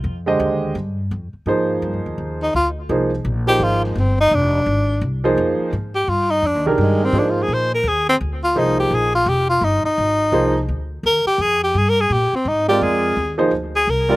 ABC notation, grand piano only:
X:1
M:4/4
L:1/8
Q:"Swing" 1/4=169
K:Fdor
V:1 name="Grand piano"
z [D,A,Gce]3 z4 | [F,B,EAc]4- [F,B,EAc] z3 | [F,B,EAc] z2 [F,B,EAc]3 z2 | z4 z [F,B,EAc]3 |
z4 z [E,DGAB]3 | [F,B,EAc]3 z4 z | [F,B,EAc]3 z4 z | z2 [F,B,EAc] z4 z |
z6 z [A,CFBd]- | [A,CFBd]2 z [F,B,EAc] z3 [G,CFBd] |]